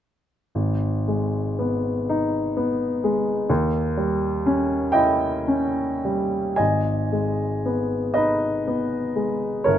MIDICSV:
0, 0, Header, 1, 2, 480
1, 0, Start_track
1, 0, Key_signature, 5, "minor"
1, 0, Tempo, 1034483
1, 257, Time_signature, 6, 3, 24, 8
1, 734, Tempo, 983607
1, 1214, Tempo, 943396
1, 2174, Tempo, 1013514
1, 2654, Tempo, 1127820
1, 3134, Tempo, 1050788
1, 3614, Tempo, 1006711
1, 4635, End_track
2, 0, Start_track
2, 0, Title_t, "Upright piano"
2, 0, Program_c, 0, 0
2, 255, Note_on_c, 0, 32, 38
2, 334, Control_c, 0, 64, 127
2, 500, Note_on_c, 0, 56, 31
2, 737, Note_on_c, 0, 59, 31
2, 884, Note_off_c, 0, 56, 0
2, 984, Note_on_c, 0, 63, 38
2, 1123, Note_off_c, 0, 59, 0
2, 1215, Note_on_c, 0, 59, 40
2, 1359, Note_off_c, 0, 63, 0
2, 1455, Note_on_c, 0, 56, 43
2, 1593, Note_off_c, 0, 59, 0
2, 1666, Note_off_c, 0, 32, 0
2, 1687, Note_on_c, 0, 39, 49
2, 1689, Note_off_c, 0, 56, 0
2, 1695, Control_c, 0, 64, 0
2, 1780, Control_c, 0, 64, 127
2, 1930, Note_on_c, 0, 55, 39
2, 2179, Note_on_c, 0, 61, 44
2, 2315, Note_off_c, 0, 55, 0
2, 2395, Note_on_c, 0, 79, 61
2, 2400, Note_on_c, 0, 75, 50
2, 2406, Note_on_c, 0, 64, 42
2, 2555, Note_off_c, 0, 61, 0
2, 2659, Note_on_c, 0, 61, 37
2, 2797, Note_off_c, 0, 64, 0
2, 2902, Note_on_c, 0, 55, 35
2, 3046, Note_off_c, 0, 61, 0
2, 3114, Note_off_c, 0, 75, 0
2, 3117, Note_off_c, 0, 39, 0
2, 3121, Note_on_c, 0, 80, 52
2, 3125, Note_on_c, 0, 75, 42
2, 3129, Note_off_c, 0, 79, 0
2, 3134, Note_on_c, 0, 32, 35
2, 3137, Note_off_c, 0, 55, 0
2, 3143, Control_c, 0, 64, 0
2, 3221, Control_c, 0, 64, 127
2, 3375, Note_on_c, 0, 56, 30
2, 3620, Note_on_c, 0, 59, 32
2, 3764, Note_off_c, 0, 56, 0
2, 3836, Note_off_c, 0, 75, 0
2, 3849, Note_on_c, 0, 75, 55
2, 3853, Note_off_c, 0, 80, 0
2, 3855, Note_on_c, 0, 71, 44
2, 3863, Note_on_c, 0, 63, 35
2, 4007, Note_off_c, 0, 59, 0
2, 4104, Note_on_c, 0, 59, 36
2, 4242, Note_off_c, 0, 63, 0
2, 4335, Note_on_c, 0, 56, 33
2, 4481, Note_off_c, 0, 59, 0
2, 4552, Note_off_c, 0, 71, 0
2, 4554, Note_off_c, 0, 32, 0
2, 4567, Note_on_c, 0, 73, 57
2, 4568, Note_off_c, 0, 75, 0
2, 4573, Note_on_c, 0, 70, 44
2, 4574, Note_off_c, 0, 56, 0
2, 4581, Note_on_c, 0, 31, 44
2, 4582, Control_c, 0, 64, 0
2, 4635, Note_off_c, 0, 31, 0
2, 4635, Note_off_c, 0, 70, 0
2, 4635, Note_off_c, 0, 73, 0
2, 4635, End_track
0, 0, End_of_file